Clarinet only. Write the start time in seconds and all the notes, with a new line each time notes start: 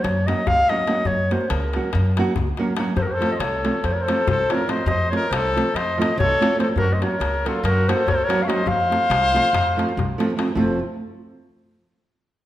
0.02 C#5
0.27 D#5
0.47 F5
0.70 D#5
1.06 C#5
1.32 C5
1.50 A#4
2.97 C5
3.02 A#4
3.11 C5
3.32 D#5
3.39 C#5
3.84 C5
3.92 C#5
4.01 C5
4.29 C5
4.51 C#5
4.69 D#5
4.87 D#5
5.11 C#5
5.30 C5
5.75 D#5
6.00 D#5
6.19 C#5
6.60 C5
6.78 A#4
6.93 D#5
7.02 C#5
7.46 A4
7.64 A#4
7.88 C5
8.07 C#5
8.14 C5
8.24 C#5
8.42 F5
8.48 D#5
8.68 F5
10.56 C5